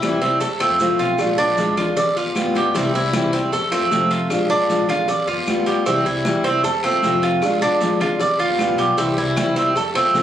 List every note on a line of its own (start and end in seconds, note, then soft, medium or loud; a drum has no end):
0.00 0.10 C2 loud
0.00 0.21 C3 medium
0.00 0.21 E3 medium
0.00 0.21 G3 medium
0.00 0.22 C4 medium
0.00 0.21 E4 medium
0.00 cowbell medium
0.00 high conga medium
0.00 short guiro medium
0.00 claves medium
0.00 maracas medium
0.04 0.20 E4 medium
0.12 0.40 C2 loud
0.22 0.41 G3 soft
0.22 0.40 C4 medium
0.22 0.41 C4 medium
0.22 0.40 E4 medium
0.22 short guiro medium
0.22 maracas soft
0.41 0.69 F2 medium
0.41 0.60 A4 medium
0.41 muted steel-string acoustic guitar stroke medium
0.41 cowbell loud
0.41 high conga soft
0.41 long guiro medium
0.41 maracas medium
0.60 0.80 A3 soft
0.60 0.98 C4 medium
0.60 0.80 C4 soft
0.60 0.79 F4 soft
0.60 cowbell medium
0.60 high conga soft
0.60 claves medium
0.60 maracas soft
0.70 0.91 F2 medium
0.79 1.18 C3 medium
0.79 1.18 F3 medium
0.79 1.19 A3 medium
0.79 1.19 C4 medium
0.79 1.19 F4 medium
0.79 cowbell medium
0.79 high conga medium
0.79 short guiro medium
0.79 maracas medium
0.89 1.17 B1 loud
0.99 1.37 F4 medium
0.99 short guiro medium
0.99 maracas soft
1.18 1.37 A#1 loud
1.18 1.38 F3 medium
1.18 1.38 G#3 medium
1.18 1.38 D4 medium
1.18 1.37 F4 medium
1.18 cowbell loud
1.18 high conga soft
1.18 long guiro medium
1.18 claves medium
1.18 maracas medium
1.38 1.66 A#1 loud
1.38 1.57 G#3 soft
1.38 1.76 D4 medium
1.38 1.58 D4 soft
1.38 1.57 F4 medium
1.38 high conga soft
1.38 maracas soft
1.57 1.76 F3 medium
1.57 1.77 G#3 medium
1.57 1.77 D4 medium
1.57 1.76 F4 medium
1.57 cowbell medium
1.57 high conga medium
1.57 short guiro medium
1.57 maracas medium
1.67 1.95 D2 loud
1.77 1.96 G#3 soft
1.77 1.96 D4 soft
1.77 1.96 F4 medium
1.77 high conga soft
1.77 low conga medium
1.77 short guiro medium
1.77 claves medium
1.77 maracas soft
1.96 2.24 G1 loud
1.96 2.16 D5 medium
1.96 muted steel-string acoustic guitar stroke medium
1.96 cowbell loud
1.96 high conga soft
1.96 low conga medium
1.96 long guiro medium
1.96 maracas medium
2.16 2.36 B3 soft
2.16 2.35 F4 soft
2.16 2.54 F4 medium
2.16 high conga soft
2.16 maracas soft
2.25 2.44 G1 medium
2.35 2.74 G3 medium
2.35 2.74 B3 medium
2.35 2.75 F4 medium
2.35 cowbell medium
2.35 high conga medium
2.35 short guiro medium
2.35 claves medium
2.35 maracas medium
2.45 2.73 G1 loud
2.55 2.75 G4 medium
2.55 cowbell medium
2.55 high conga medium
2.55 short guiro medium
2.55 maracas soft
2.74 2.93 C2 loud
2.74 2.93 C3 medium
2.74 2.94 E3 medium
2.74 2.94 G3 medium
2.74 2.94 C4 medium
2.74 2.93 E4 medium
2.74 cowbell loud
2.74 high conga soft
2.74 long guiro medium
2.74 maracas medium
2.93 3.21 C2 loud
2.93 3.14 G3 soft
2.93 3.13 C4 soft
2.93 3.13 E4 medium
2.93 3.32 E4 medium
2.93 high conga soft
2.93 maracas soft
3.13 3.32 C3 medium
3.13 3.32 E3 medium
3.13 3.33 G3 medium
3.13 3.33 C4 medium
3.13 3.31 E4 medium
3.13 cowbell medium
3.13 high conga loud
3.13 short guiro medium
3.13 claves medium
3.13 maracas medium
3.23 3.51 C2 medium
3.33 3.52 G3 soft
3.33 3.52 C4 medium
3.33 3.52 C4 soft
3.33 3.51 E4 medium
3.33 short guiro medium
3.33 maracas soft
3.52 3.80 F2 medium
3.52 3.72 A4 medium
3.52 muted steel-string acoustic guitar stroke medium
3.52 cowbell loud
3.52 high conga soft
3.52 long guiro medium
3.52 maracas medium
3.72 3.91 A3 soft
3.72 4.10 C4 medium
3.72 3.91 C4 soft
3.72 3.90 F4 medium
3.72 cowbell medium
3.72 high conga soft
3.72 claves medium
3.72 maracas soft
3.81 4.00 F2 medium
3.91 4.29 C3 medium
3.91 4.29 F3 medium
3.91 4.30 A3 medium
3.91 4.30 C4 medium
3.91 4.31 F4 medium
3.91 cowbell medium
3.91 high conga medium
3.91 short guiro medium
3.91 maracas medium
4.01 4.29 F2 loud
4.11 4.49 F4 medium
4.11 short guiro medium
4.11 maracas soft
4.30 4.49 A#1 loud
4.30 4.49 F3 medium
4.30 4.49 G#3 medium
4.30 4.50 D4 medium
4.30 4.49 F4 medium
4.30 cowbell loud
4.30 long guiro medium
4.30 claves medium
4.30 maracas medium
4.49 4.77 A#1 loud
4.49 4.69 G#3 soft
4.49 4.87 D4 medium
4.49 4.69 D4 soft
4.49 4.69 F4 soft
4.49 high conga soft
4.49 maracas soft
4.69 4.88 F3 medium
4.69 4.88 G#3 medium
4.69 4.89 D4 medium
4.69 4.87 F4 medium
4.69 cowbell medium
4.69 high conga medium
4.69 short guiro medium
4.69 maracas medium
4.79 5.06 A#1 loud
4.89 5.08 G#3 soft
4.89 5.08 D4 medium
4.89 5.07 F4 soft
4.89 5.08 F4 medium
4.89 high conga soft
4.89 low conga medium
4.89 short guiro medium
4.89 claves medium
4.89 maracas soft
5.07 5.26 G1 medium
5.07 5.27 D5 medium
5.07 muted steel-string acoustic guitar stroke medium
5.07 cowbell loud
5.07 high conga soft
5.07 low conga medium
5.07 long guiro medium
5.07 maracas medium
5.27 5.45 F2 medium
5.27 5.48 B3 soft
5.27 5.65 F4 medium
5.27 5.47 F4 medium
5.27 high conga soft
5.27 maracas soft
5.47 5.65 E2 medium
5.47 5.86 G3 medium
5.47 5.86 B3 medium
5.47 5.87 F4 medium
5.47 cowbell medium
5.47 high conga medium
5.47 short guiro medium
5.47 claves medium
5.47 maracas medium
5.66 5.84 D2 medium
5.66 5.85 G4 medium
5.66 cowbell medium
5.66 short guiro medium
5.66 maracas soft
5.86 6.05 C2 loud
5.86 6.05 C3 medium
5.86 6.05 E3 medium
5.86 6.06 G3 medium
5.86 6.05 C4 medium
5.86 6.06 C4 medium
5.86 6.05 E4 medium
5.86 cowbell loud
5.86 high conga soft
5.86 long guiro medium
5.86 maracas medium
6.05 6.33 C2 loud
6.05 6.26 G3 soft
6.05 6.25 C4 soft
6.05 6.43 E4 medium
6.05 6.25 E4 medium
6.05 high conga soft
6.05 maracas soft
6.25 6.44 C3 medium
6.25 6.44 E3 medium
6.25 6.45 G3 medium
6.25 6.45 C4 medium
6.25 6.45 E4 medium
6.25 cowbell medium
6.25 high conga loud
6.25 short guiro medium
6.25 claves medium
6.25 maracas medium
6.35 6.62 C2 loud
6.44 6.63 C4 medium
6.44 6.64 C4 soft
6.44 6.64 E4 medium
6.44 short guiro medium
6.44 maracas soft
6.49 6.65 G3 soft
6.64 6.92 F2 medium
6.64 6.83 A4 medium
6.64 muted steel-string acoustic guitar stroke medium
6.64 cowbell loud
6.64 high conga soft
6.64 long guiro medium
6.64 maracas medium
6.83 7.04 A3 soft
6.83 7.21 C4 medium
6.83 7.03 C4 soft
6.83 7.03 F4 soft
6.83 cowbell medium
6.83 high conga soft
6.83 claves medium
6.83 maracas soft
6.93 7.12 F2 medium
7.03 7.42 C3 medium
7.03 7.42 F3 medium
7.03 7.42 A3 medium
7.03 7.43 C4 medium
7.03 7.43 F4 medium
7.03 cowbell medium
7.03 high conga medium
7.03 short guiro medium
7.03 maracas medium
7.13 7.41 F2 loud
7.22 7.60 F4 medium
7.22 short guiro medium
7.22 maracas soft
7.42 7.60 A#1 medium
7.42 7.61 F3 medium
7.42 7.61 G#3 medium
7.42 7.62 D4 medium
7.42 7.61 F4 medium
7.42 cowbell loud
7.42 high conga soft
7.42 long guiro medium
7.42 claves medium
7.42 maracas medium
7.62 7.89 A#1 loud
7.62 7.81 G#3 soft
7.62 7.99 D4 loud
7.62 7.81 D4 medium
7.62 7.80 F4 medium
7.62 high conga soft
7.62 maracas soft
7.81 8.00 F3 medium
7.81 8.01 G#3 medium
7.81 8.01 D4 medium
7.81 8.00 F4 medium
7.81 cowbell medium
7.81 high conga medium
7.81 short guiro medium
7.81 maracas medium
7.90 8.18 D2 medium
8.00 8.21 G#3 soft
8.00 8.20 D4 soft
8.00 8.20 F4 medium
8.00 8.20 F4 soft
8.00 high conga soft
8.00 low conga medium
8.00 short guiro medium
8.00 claves medium
8.00 maracas soft
8.19 8.47 G1 loud
8.19 8.39 D5 medium
8.19 muted steel-string acoustic guitar stroke medium
8.19 cowbell loud
8.19 high conga soft
8.19 low conga medium
8.19 long guiro medium
8.19 maracas medium
8.39 8.59 B3 soft
8.39 8.77 F4 medium
8.39 8.58 F4 medium
8.39 high conga soft
8.39 maracas soft
8.48 8.70 G1 medium
8.58 8.97 G3 medium
8.58 8.98 B3 medium
8.58 8.98 F4 medium
8.58 cowbell medium
8.58 high conga medium
8.58 short guiro medium
8.58 claves medium
8.58 maracas medium
8.69 8.96 B1 loud
8.78 8.97 G4 medium
8.78 cowbell medium
8.78 short guiro medium
8.78 maracas soft
8.97 9.16 C2 loud
8.97 9.16 C3 medium
8.97 9.17 E3 medium
8.97 9.17 G3 medium
8.97 9.17 C4 medium
8.97 9.16 E4 medium
8.97 cowbell loud
8.97 high conga soft
8.97 long guiro medium
8.97 maracas medium
9.17 9.45 C2 loud
9.17 9.37 G3 soft
9.17 9.37 C4 soft
9.17 9.36 E4 soft
9.17 9.55 E4 medium
9.17 high conga soft
9.17 maracas soft
9.36 9.55 C3 medium
9.36 9.56 E3 medium
9.36 9.56 G3 medium
9.36 9.56 C4 medium
9.36 9.55 E4 medium
9.36 cowbell medium
9.36 high conga loud
9.36 short guiro medium
9.36 claves medium
9.36 maracas medium
9.46 9.74 C2 loud
9.56 9.75 G3 soft
9.56 9.75 C4 medium
9.56 9.74 C4 medium
9.56 9.75 E4 medium
9.56 short guiro medium
9.56 maracas soft
9.74 10.03 F2 medium
9.74 9.95 A4 medium
9.74 muted steel-string acoustic guitar stroke medium
9.74 cowbell loud
9.74 high conga soft
9.74 long guiro medium
9.74 maracas medium
9.94 10.14 A3 soft
9.94 10.23 C4 medium
9.94 10.14 C4 soft
9.94 10.13 F4 soft
9.94 cowbell medium
9.94 high conga soft
9.94 claves medium
9.94 maracas soft
10.05 10.23 F2 medium
10.14 10.23 C3 medium
10.14 10.23 F3 medium
10.14 10.23 A3 medium
10.14 10.23 C4 medium
10.14 10.23 F4 medium
10.14 cowbell medium
10.14 high conga medium
10.14 short guiro medium
10.14 maracas medium